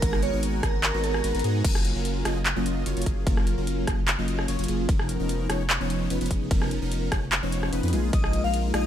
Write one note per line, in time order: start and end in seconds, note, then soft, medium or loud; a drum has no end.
0.00 0.31 G#1 loud
0.00 0.31 G#3 medium
0.00 0.31 B3 medium
0.00 0.31 D#4 medium
0.00 0.31 F#4 medium
0.00 1.60 G#4 medium
0.00 0.21 A#4 loud
0.00 0.31 A#4 medium
0.00 1.61 F#5 medium
0.00 1.61 G#5 medium
0.00 1.60 A#5 medium
0.00 kick loud
0.00 closed hi-hat medium
0.00 ride soft
0.13 cross-stick medium
0.23 0.36 C#5 loud
0.23 closed hi-hat medium
0.33 0.61 G#1 loud
0.33 0.61 G#3 medium
0.33 0.61 B3 medium
0.33 0.61 D#4 medium
0.33 0.61 F#4 medium
0.33 0.61 A#4 medium
0.43 closed hi-hat medium
0.63 0.92 G#1 loud
0.63 0.76 G#3 medium
0.63 0.76 B3 medium
0.63 0.76 D#4 medium
0.63 0.76 F#4 medium
0.63 1.02 A#4 loud
0.63 0.76 C#5 loud
0.63 kick medium
0.63 cross-stick medium
0.63 closed hi-hat medium
0.83 clap loud
0.83 closed hi-hat medium
0.83 ride soft
0.94 1.22 G#1 medium
0.94 1.22 G#3 medium
0.94 1.22 B3 medium
0.94 1.22 D#4 medium
0.94 1.22 F#4 medium
0.94 1.22 C#5 loud
1.04 1.61 A#4 loud
1.04 closed hi-hat medium
1.14 cross-stick medium
1.24 1.32 G#1 loud
1.24 1.32 G#3 loud
1.24 1.32 B3 medium
1.24 1.32 D#4 medium
1.24 1.32 F#4 medium
1.24 1.32 B4 loud
1.24 closed hi-hat medium
1.35 1.42 G#1 loud
1.35 1.42 G#3 medium
1.35 1.42 B3 medium
1.35 1.42 D#4 medium
1.35 1.42 F#4 medium
1.35 1.42 B4 loud
1.35 closed hi-hat medium
1.39 closed hi-hat medium
1.44 1.63 G#2 loud
1.44 1.62 G#3 medium
1.44 1.62 B3 medium
1.44 1.62 D#4 medium
1.44 1.62 F#4 medium
1.44 1.62 G#4 loud
1.44 closed hi-hat medium
1.64 1.93 F#1 loud
1.64 1.93 F#3 medium
1.64 1.93 A#3 medium
1.64 1.93 C#4 medium
1.64 1.93 F4 medium
1.64 1.93 A#4 medium
1.64 kick loud
1.64 closed hi-hat medium
1.64 crash loud
1.64 ride soft
1.75 cross-stick medium
1.85 closed hi-hat medium
1.95 2.23 F#1 loud
1.95 2.23 F#3 medium
1.95 2.23 A#3 medium
1.95 2.23 C#4 medium
1.95 2.23 F4 medium
1.95 2.23 A#4 medium
2.05 closed hi-hat medium
2.25 2.54 F#1 loud
2.25 2.38 F#3 loud
2.25 2.38 A#3 medium
2.25 2.38 C#4 medium
2.25 2.38 F4 medium
2.25 2.38 D#5 loud
2.25 cross-stick medium
2.25 closed hi-hat medium
2.46 clap loud
2.46 closed hi-hat medium
2.56 2.84 F#1 loud
2.56 2.84 F#3 medium
2.56 2.84 A#3 medium
2.56 2.84 C#4 medium
2.56 2.84 F4 medium
2.56 2.84 D#5 loud
2.66 closed hi-hat medium
2.86 2.95 F#1 loud
2.86 2.94 F#3 medium
2.86 2.94 A#3 medium
2.86 2.94 C#4 medium
2.86 2.94 F4 medium
2.86 2.94 C#5 loud
2.86 closed hi-hat medium
2.97 3.04 F#1 loud
2.97 3.04 F#3 medium
2.97 3.04 A#3 medium
2.97 3.04 C#4 medium
2.97 3.04 F4 medium
2.97 3.04 C#5 loud
2.97 closed hi-hat medium
3.02 closed hi-hat medium
3.06 3.25 F#1 loud
3.06 3.24 F#3 medium
3.06 3.24 A#3 medium
3.06 3.24 C#4 medium
3.06 3.24 F4 medium
3.06 3.24 G#4 loud
3.06 kick medium
3.06 closed hi-hat medium
3.27 3.55 F#1 loud
3.27 3.55 F#3 medium
3.27 3.55 A#3 medium
3.27 3.55 C#4 medium
3.27 3.55 F4 medium
3.27 3.55 A#4 medium
3.27 kick loud
3.27 closed hi-hat medium
3.27 ride soft
3.37 cross-stick medium
3.47 closed hi-hat medium
3.58 3.86 F#1 loud
3.58 3.85 F#3 medium
3.58 3.85 A#3 medium
3.58 3.85 C#4 medium
3.58 3.85 F4 medium
3.58 3.85 A#4 medium
3.67 closed hi-hat medium
3.87 4.16 F#1 loud
3.87 4.00 F#3 medium
3.87 4.00 A#3 medium
3.87 4.00 C#4 medium
3.87 4.00 F4 medium
3.87 4.00 D#5 loud
3.87 kick medium
3.87 cross-stick medium
3.87 closed hi-hat medium
4.08 clap loud
4.08 closed hi-hat medium
4.18 4.46 F#1 loud
4.18 4.46 F#3 medium
4.18 4.46 A#3 medium
4.18 4.46 C#4 medium
4.18 4.46 F4 medium
4.18 4.46 D#5 loud
4.28 closed hi-hat medium
4.39 cross-stick medium
4.48 4.57 F#1 loud
4.48 4.56 F#3 medium
4.48 4.56 A#3 medium
4.48 4.56 C#4 medium
4.48 4.56 F4 medium
4.48 4.56 C#5 loud
4.48 closed hi-hat medium
4.59 4.67 F#1 loud
4.59 4.66 F#3 medium
4.59 4.66 A#3 medium
4.59 4.66 C#4 medium
4.59 4.66 F4 medium
4.59 4.66 C#5 loud
4.59 closed hi-hat medium
4.64 closed hi-hat medium
4.68 4.87 F#1 loud
4.68 4.86 F#3 medium
4.68 4.86 A#3 medium
4.68 4.86 C#4 medium
4.68 4.86 F4 medium
4.68 4.86 G#4 loud
4.68 closed hi-hat medium
4.89 5.18 F1 loud
4.89 5.17 F3 medium
4.89 5.17 B3 medium
4.89 5.17 C#4 medium
4.89 5.17 D#4 medium
4.89 5.17 A#4 medium
4.89 kick loud
4.89 closed hi-hat medium
4.89 ride soft
4.99 cross-stick medium
5.09 closed hi-hat medium
5.20 5.48 F1 loud
5.20 5.47 F3 medium
5.20 5.47 B3 medium
5.20 5.47 C#4 medium
5.20 5.47 D#4 medium
5.20 5.47 A#4 medium
5.29 closed hi-hat medium
5.50 5.78 F1 loud
5.50 5.62 F3 loud
5.50 5.62 B3 medium
5.50 5.62 C#4 medium
5.50 5.62 D#4 medium
5.50 5.62 C#5 loud
5.50 cross-stick medium
5.50 closed hi-hat medium
5.70 clap loud
5.70 closed hi-hat medium
5.80 6.08 F1 medium
5.80 6.08 F3 medium
5.80 6.08 B3 medium
5.80 6.08 C#4 medium
5.80 6.08 D#4 medium
5.80 6.08 C#5 loud
5.90 closed hi-hat medium
6.10 6.19 F1 loud
6.10 6.19 F3 medium
6.10 6.18 B3 medium
6.10 6.19 C#4 medium
6.10 6.19 D#4 medium
6.10 6.19 B4 loud
6.10 closed hi-hat medium
6.21 6.29 F1 loud
6.21 6.28 F3 medium
6.21 6.28 B3 medium
6.21 6.28 C#4 medium
6.21 6.28 D#4 medium
6.21 6.28 B4 loud
6.21 closed hi-hat soft
6.26 closed hi-hat medium
6.31 6.49 F1 loud
6.31 6.49 F3 medium
6.31 6.49 B3 medium
6.31 6.49 C#4 medium
6.31 6.49 D#4 medium
6.31 6.49 G#4 loud
6.31 kick medium
6.31 closed hi-hat medium
6.51 6.80 F1 loud
6.51 6.79 F3 medium
6.51 6.79 B3 medium
6.51 6.79 C#4 medium
6.51 6.79 D#4 medium
6.51 6.79 A#4 medium
6.51 kick loud
6.51 closed hi-hat medium
6.51 ride soft
6.62 cross-stick medium
6.71 closed hi-hat medium
6.82 7.10 F1 loud
6.82 7.09 F3 medium
6.82 7.09 B3 medium
6.82 7.09 C#4 medium
6.82 7.09 D#4 medium
6.82 7.09 A#4 medium
6.92 closed hi-hat medium
7.12 7.41 F1 loud
7.12 7.25 F3 medium
7.12 7.25 B3 medium
7.12 7.25 C#4 medium
7.12 7.25 D#4 medium
7.12 7.25 C#5 loud
7.12 kick medium
7.12 cross-stick medium
7.12 closed hi-hat medium
7.32 clap loud
7.32 closed hi-hat medium
7.43 7.71 F1 loud
7.43 7.70 F3 medium
7.43 7.70 B3 medium
7.43 7.70 C#4 medium
7.43 7.70 D#4 medium
7.43 7.70 C#5 loud
7.52 closed hi-hat medium
7.63 cross-stick medium
7.73 7.81 F1 loud
7.73 7.81 F3 medium
7.73 7.81 B3 medium
7.73 7.81 C#4 medium
7.73 7.81 D#4 medium
7.73 7.81 B4 loud
7.73 closed hi-hat medium
7.83 7.94 F2 loud
7.83 7.91 F3 medium
7.83 7.91 B3 medium
7.83 7.91 C#4 medium
7.83 7.91 D#4 medium
7.83 7.91 B4 loud
7.83 closed hi-hat soft
7.88 closed hi-hat medium
7.93 8.11 A#1 loud
7.93 8.11 G#3 medium
7.93 8.11 A#3 medium
7.93 8.11 D#4 medium
7.93 8.11 F4 medium
7.93 8.11 G#4 loud
7.93 closed hi-hat medium
8.13 8.42 A#1 loud
8.13 8.41 G#3 medium
8.13 8.41 A#3 medium
8.13 8.42 D#4 medium
8.13 8.41 F4 medium
8.13 8.41 A#4 medium
8.13 8.42 D#5 loud
8.13 kick loud
8.13 closed hi-hat medium
8.13 ride medium
8.24 cross-stick medium
8.33 closed hi-hat medium
8.44 8.72 A#1 loud
8.44 8.72 G#3 medium
8.44 8.72 A#3 medium
8.44 8.72 D#4 medium
8.44 8.72 F4 medium
8.44 8.72 A#4 medium
8.44 8.57 F5 loud
8.54 closed hi-hat medium
8.74 8.87 A#1 loud
8.74 8.87 G#3 medium
8.74 8.87 A#3 medium
8.74 8.87 D#4 medium
8.74 8.87 F4 medium
8.74 8.87 D#5 loud
8.74 cross-stick medium
8.74 closed hi-hat medium